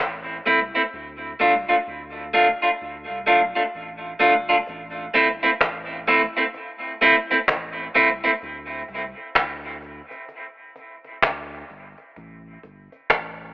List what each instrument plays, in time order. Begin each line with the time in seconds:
0.00 sub bass A1
0.46 sub bass C2, clean electric guitar A3 C4 E4, cajon slap
0.74 clean electric guitar A3 C4 E4, cajon slap
0.93 sub bass D2
1.40 sub bass C2, clean electric guitar A3 D4 F4
1.69 clean electric guitar A3 D4 F4
1.87 sub bass D2
2.34 clean electric guitar A3 D4 F4
2.62 clean electric guitar A3 D4 F4
2.81 sub bass D2
3.10 sub bass C2
3.26 sub bass B1, clean electric guitar A3 D4 F4
3.55 clean electric guitar A3 D4 F4
3.74 sub bass A1
4.20 sub bass G1, clean electric guitar A3 D4 F4
4.49 clean electric guitar A3 D4 F4
4.67 sub bass A1, cajon slap
5.14 sub bass G1, clean electric guitar A3 C4 E4, cajon slap
5.43 clean electric guitar A3 C4 E4, cajon slap
5.61 sub bass A1, cajon bass, cajon slap
6.08 clean electric guitar A3 C4 E4, cajon slap
6.37 clean electric guitar A3 C4 E4, cajon slap
6.54 cajon slap
7.01 clean electric guitar A3 C4 E4, cajon slap
7.30 clean electric guitar A3 C4 E4, cajon slap
7.48 sub bass A1, cajon bass, cajon slap
7.95 sub bass C2, clean electric guitar A3 C4 E4, cajon slap
8.23 clean electric guitar A3 C4 E4, cajon slap
8.42 sub bass D2, cajon slap
8.89 sub bass C2, cajon slap
9.17 cajon slap
9.35 sub bass D2, cajon bass, cajon slap
9.82 cajon slap
10.11 cajon slap
10.29 cajon slap
10.76 cajon slap
11.04 cajon slap
11.22 sub bass D2, cajon bass, cajon slap
11.70 sub bass G1, cajon slap
11.98 cajon slap
12.16 sub bass A1, cajon slap
12.63 sub bass G1, cajon slap
12.92 cajon slap
13.10 sub bass A1, cajon bass, cajon slap